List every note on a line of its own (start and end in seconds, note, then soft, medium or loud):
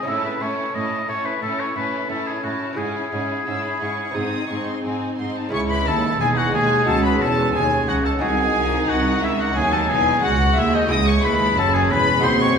0.03 2.72 C#4 soft
0.03 0.39 C#4 medium
0.03 2.73 E4 soft
0.03 0.39 A5 medium
0.07 0.15 A2 medium
0.07 0.38 A2 soft
0.07 0.40 E4 medium
0.07 0.24 E5 medium
0.25 0.43 B4 medium
0.40 0.49 A2 medium
0.40 0.71 A2 soft
0.40 0.73 C#4 soft
0.40 0.74 E4 soft
0.40 0.76 C#5 medium
0.40 0.73 A5 soft
0.74 0.82 A2 medium
0.74 1.05 A2 soft
0.74 1.07 C#4 soft
0.74 1.07 E4 soft
0.74 1.08 D#5 medium
0.74 1.07 A5 medium
1.08 1.16 A2 soft
1.08 1.39 A2 soft
1.08 1.40 C#4 soft
1.08 1.41 E4 soft
1.08 1.27 C#5 medium
1.08 1.40 A5 soft
1.25 1.42 B4 medium
1.41 1.49 A2 medium
1.41 1.72 A2 soft
1.41 1.74 C#4 medium
1.41 1.75 E4 medium
1.41 1.61 A4 medium
1.41 1.74 A5 soft
1.60 1.75 C#5 medium
1.75 1.84 A2 medium
1.75 2.06 A2 soft
1.75 2.08 C#4 soft
1.75 2.09 E4 soft
1.75 2.09 B4 medium
1.75 2.08 A5 soft
2.09 2.17 A2 soft
2.09 2.40 A2 soft
2.09 2.42 C#4 soft
2.09 2.44 E4 medium
2.09 2.29 A4 medium
2.09 2.42 A5 soft
2.27 2.43 G#4 medium
2.43 2.74 A2 soft
2.43 2.52 A2 medium
2.43 2.77 C#4 soft
2.43 2.78 E4 soft
2.43 2.79 F#4 medium
2.43 2.77 A5 soft
2.73 4.09 C#4 soft
2.73 4.10 E4 soft
2.73 4.11 G#4 soft
2.77 3.09 G#2 soft
2.77 2.86 G#2 soft
2.77 3.11 C#4 soft
2.77 3.12 E4 medium
2.77 4.84 G#4 medium
2.77 3.11 G#5 medium
3.12 3.43 G#2 soft
3.12 3.21 G#2 medium
3.12 3.46 C#4 soft
3.12 3.46 E4 soft
3.12 3.46 G#5 soft
3.47 3.78 G#2 soft
3.47 3.55 G#2 soft
3.47 3.80 C#4 soft
3.47 3.80 E4 soft
3.47 3.63 E6 medium
3.64 3.81 B5 soft
3.81 3.89 G#2 soft
3.81 4.13 G#2 soft
3.81 4.15 C#4 soft
3.81 4.15 E4 soft
3.81 4.16 C#6 soft
4.11 5.47 C4 soft
4.11 5.47 D#4 soft
4.11 5.48 G#4 soft
4.11 4.50 D#6 medium
4.15 4.24 G#2 medium
4.15 4.47 G#2 soft
4.15 4.49 C4 soft
4.15 4.49 D#4 soft
4.49 4.81 G#2 soft
4.49 4.58 G#2 soft
4.49 4.83 C4 soft
4.49 4.83 D#4 soft
4.49 4.67 C#6 medium
4.67 4.84 C6 soft
4.83 4.92 G#2 soft
4.83 5.15 G#2 soft
4.83 5.17 C4 soft
4.83 5.17 D#4 soft
4.83 5.18 G#5 medium
5.18 5.27 G#2 soft
5.18 5.50 G#2 soft
5.18 5.52 C4 soft
5.18 5.52 D#4 soft
5.18 5.35 C6 soft
5.36 5.53 A5 soft
5.49 6.81 C#4 soft
5.49 6.82 E4 soft
5.49 6.83 G#4 medium
5.53 5.84 C#2 medium
5.53 8.18 G#3 medium
5.53 6.16 E4 medium
5.53 5.60 C#5 medium
5.53 5.60 C#6 loud
5.70 5.89 B4 medium
5.70 5.86 B5 medium
5.86 6.20 D#2 medium
5.86 6.17 D#2 medium
5.86 6.20 A4 medium
5.86 6.20 A5 medium
6.19 6.53 E1 medium
6.19 6.53 E2 medium
6.19 6.51 E2 medium
6.19 6.88 D#4 medium
6.19 6.39 G#4 medium
6.19 6.27 G#5 medium
6.37 6.54 F#4 medium
6.37 6.53 F#5 medium
6.53 6.87 D#2 medium
6.53 6.85 D#2 medium
6.53 6.89 G#4 medium
6.53 6.87 G#5 medium
6.85 7.21 C#2 medium
6.85 7.53 C#4 medium
6.85 8.17 D#4 medium
6.85 8.17 F#4 soft
6.85 7.04 A4 medium
6.85 7.04 A5 loud
7.04 7.23 B4 medium
7.04 7.21 B5 medium
7.20 7.54 E1 medium
7.20 7.54 E2 medium
7.20 7.52 E2 medium
7.20 7.55 A4 medium
7.20 7.54 A5 medium
7.54 7.87 D#2 medium
7.54 7.88 D#2 medium
7.54 7.85 D#2 medium
7.54 8.20 C#4 medium
7.54 7.90 G#4 medium
7.54 7.87 G#5 medium
7.88 8.21 C#2 medium
7.88 8.06 F#4 medium
7.88 7.95 F#5 medium
8.04 8.20 A4 medium
8.04 8.12 A5 medium
8.19 8.55 C2 medium
8.19 9.57 D#3 medium
8.19 10.85 G#3 medium
8.19 10.86 D#4 medium
8.19 9.55 D#4 medium
8.19 10.86 F#4 medium
8.19 8.90 G#4 medium
8.19 8.88 G#5 loud
8.56 8.88 C2 medium
8.89 9.22 C2 medium
8.89 9.23 F#4 medium
8.89 9.22 F#5 medium
9.23 9.56 C#2 medium
9.23 9.31 E4 medium
9.23 9.40 E5 medium
9.39 9.56 F#4 medium
9.39 9.56 F#5 medium
9.56 9.90 D#2 medium
9.56 9.87 D#2 medium
9.56 9.90 D#2 medium
9.56 10.22 F#3 medium
9.56 10.22 D#4 medium
9.56 9.74 G#4 medium
9.56 9.73 G#5 loud
9.73 9.91 A4 medium
9.73 9.90 A5 medium
9.89 10.23 E1 medium
9.89 10.23 E2 medium
9.89 10.21 E2 medium
9.89 10.23 G#4 medium
9.89 10.23 G#5 loud
10.22 10.56 C#2 medium
10.22 10.57 C#2 medium
10.22 10.90 G#3 medium
10.22 10.91 F#4 medium
10.22 10.59 F#4 medium
10.22 10.56 F#5 loud
10.57 10.90 D#2 medium
10.57 10.88 D#2 medium
10.57 10.76 E4 medium
10.57 10.74 E5 loud
10.73 10.93 D#4 medium
10.73 10.90 D#5 medium
10.87 11.24 C#2 medium
10.87 11.21 G#3 medium
10.87 12.59 G#3 medium
10.87 12.19 E4 medium
10.87 12.20 G#4 medium
10.87 11.07 D#6 loud
10.91 11.58 E4 medium
10.91 11.07 D#5 medium
11.07 11.26 C#5 medium
11.07 11.24 C#6 medium
11.23 11.57 D#2 medium
11.23 11.55 D#2 medium
11.23 11.58 B4 medium
11.23 11.57 B5 loud
11.57 11.90 F#1 medium
11.57 11.90 F#2 medium
11.57 11.88 F#2 medium
11.57 12.24 C#4 medium
11.57 11.76 A4 medium
11.57 11.74 A5 loud
11.74 11.93 G#4 medium
11.74 11.91 G#5 medium
11.90 12.24 E1 medium
11.90 12.24 E2 medium
11.90 12.21 E2 medium
11.90 12.25 B4 loud
11.90 12.23 B5 loud
12.19 12.54 G#3 soft
12.19 12.59 F#4 medium
12.19 12.59 G#4 medium
12.24 12.54 D#2 medium
12.24 12.57 D#2 medium
12.24 12.59 C4 medium
12.24 12.40 C5 medium
12.24 12.41 C6 loud
12.41 12.58 C#5 medium
12.41 12.57 C#6 loud